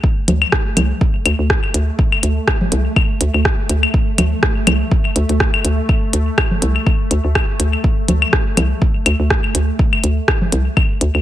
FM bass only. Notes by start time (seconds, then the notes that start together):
0.28 D2
0.77 C2
1.26 D2
1.39 D2
1.74 D2
2.23 D2
2.72 C2
3.21 D2
3.34 D2
3.70 D2
4.18 D2
4.67 C2
5.16 D2
5.30 D2
5.65 D2
6.13 D2
6.62 C2
7.11 D2
7.25 D2
7.60 D2
8.08 D2
8.57 C2
9.06 D2
9.20 D2
9.55 D2
10.04 D2
10.52 C2
11.01 D2
11.15 D2